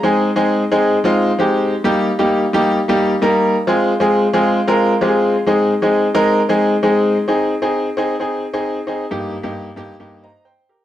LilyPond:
\new Staff \with { instrumentName = "Grand piano" } { \time 4/4 \key aes \major \tempo 4 = 132 <aes c' ees' aes'>8 r16 <aes c' ees' aes'>8 r16 <aes c' ees' aes'>8 r16 <aes c' ees' f'>8 r16 <aes c' ees' g'>8. r16 | <g bes ees' g'>8 r16 <g bes ees' g'>8 r16 <g bes ees' g'>8 r16 <g bes ees' g'>8 r16 <g bes ees' bes'>8. r16 | <aes c' f' aes'>8 r16 <aes c' f' aes'>8 r16 <aes c' f' aes'>8 r16 <aes c' f' bes'>8 r16 <aes c' f' g' aes'>8. r16 | <aes c' ees' aes'>8 r16 <aes c' ees' aes'>8 r16 <aes c' ees' bes'>8 r16 <aes c' ees' aes'>8 r16 <aes c' ees' aes'>8. r16 |
<c' ees' aes'>8 r16 <c' ees' aes'>8 r16 <c' ees' aes'>16 r16 <c' ees' aes'>8 r16 <c' ees' aes'>8 r16 <c' ees' aes'>16 r16 | <g, bes ees' g'>8 r16 <g, bes ees' g'>8 r16 <g, bes ees' g'>16 r16 <g, bes ees' g'>8 <c'' ees'' bes''>8 <c'' g''>8 <g' bes'>8 | }